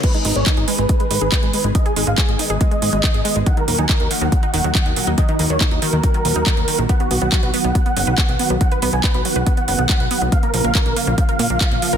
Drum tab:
CC |x---------------|----------------|----------------|----------------|
HH |xxoxxxoxxxo-xxox|xxoxxxoxxxo-xxox|xxoxxxoxxxoxxxox|xxoxxxoxxxoxxxox|
CP |----x-------x---|----x-------x---|----x-------x---|----x-------x---|
BD |o---o---o---o---|o---o---o---o---|o---o---o---o---|o---o---o---o---|

CC |----------------|----------------|----------------|
HH |xxoxxxoxxxoxxxo-|xxoxxxoxxxoxxxox|xxoxxxoxxxoxxxox|
CP |----x-------x---|----x-------x---|----x-------x---|
BD |o---o---o---o---|o---o---o---o---|o---o---o---o---|